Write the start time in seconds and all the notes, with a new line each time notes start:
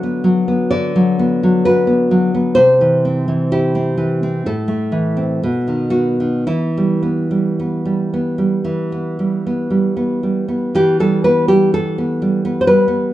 Already playing: D3 F#3 F#4 E5
0.03 B3
0.24 F#3
0.48 B3
0.71 D3 D5
0.96 F#3
1.19 B3
1.43 F#3
1.65 F#4 B4
1.87 B3
2.11 F#3
2.35 B3
2.55 C3 C5
2.81 E3
3.05 C4
3.28 E3
3.52 E4 G4
3.75 C4
3.98 E3
4.23 C4
4.46 A2 A4
4.68 A3
4.92 E3
5.17 C4
5.43 B2
5.68 D#3
5.90 B3 F#4
6.20 D#3
6.47 E3 E4
6.77 G3
7.03 B3
7.31 G3
7.60 B3
7.86 G3
8.14 B3
8.38 G3
8.65 E3
8.92 B3
9.19 G3
9.47 B3
9.70 G3
9.97 B3
10.23 G3
10.48 B3
10.75 E3 G4
11.00 G3 A4
11.24 B3 B4
11.48 G3 G4
11.74 A4
11.98 B3
12.22 G3
12.45 B3
12.61 C5
12.67 G3 B4
12.88 B3